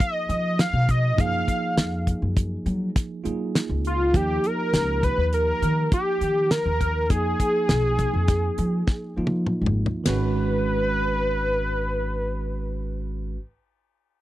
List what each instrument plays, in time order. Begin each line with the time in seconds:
Already playing: tine electric piano F3 A#3 D#4 G#4, analog synth lead F5
0.00 kick, closed hi-hat
0.13 analog synth lead D#5
0.29 upright bass F3, analog synth lead D#5, closed hi-hat
0.59 analog synth lead F5, snare, closed hi-hat
0.73 upright bass B2
0.89 analog synth lead D#5, kick, closed hi-hat
1.17 upright bass F#2, tine electric piano F3 A#3 D#4 G#4, analog synth lead F5, kick, closed hi-hat
1.48 kick, closed hi-hat
1.77 upright bass F2, snare, closed hi-hat
2.07 kick, closed hi-hat
2.22 upright bass F#2
2.37 kick, closed hi-hat
2.66 upright bass F#3, closed hi-hat
2.96 kick, snare, closed hi-hat
3.24 upright bass F#3, tine electric piano A#3 D#4 F4 G#4, closed hi-hat
3.55 snare, closed hi-hat
3.69 upright bass C#2
3.85 analog synth lead F4, closed hi-hat
4.13 upright bass D#2, tine electric piano F3 A#3 D#4 G4, analog synth lead G4, kick, closed hi-hat
4.44 analog synth lead A#4, closed hi-hat
4.73 upright bass C#2, snare, closed hi-hat
5.03 analog synth lead B4, kick, closed hi-hat
5.18 upright bass D#2, analog synth lead B4
5.33 analog synth lead A#4, closed hi-hat
5.62 upright bass D#3, closed hi-hat
5.92 analog synth lead G4, kick, closed hi-hat
6.21 upright bass D#3, closed hi-hat
6.51 analog synth lead A#4, snare, closed hi-hat
6.66 upright bass D#2
6.81 kick, closed hi-hat
7.09 upright bass F2, tine electric piano F3 A#3 D#4 G#4, analog synth lead G#4, kick, closed hi-hat
7.40 kick, closed hi-hat
7.69 upright bass B1, snare, closed hi-hat
7.99 kick, closed hi-hat
8.14 upright bass F2
8.28 kick, snare, closed hi-hat
8.58 upright bass F3, closed hi-hat
8.87 kick, snare
9.17 tine electric piano F3 A#3 D#4 F4, upright bass F3
9.27 high tom
9.46 mid tom
9.62 upright bass G#1
9.66 mid tom
9.86 floor tom
10.04 upright bass G#1, tine electric piano D#3 G#3 C#4, analog synth lead B4, snare, ride bell
10.09 tine electric piano F#4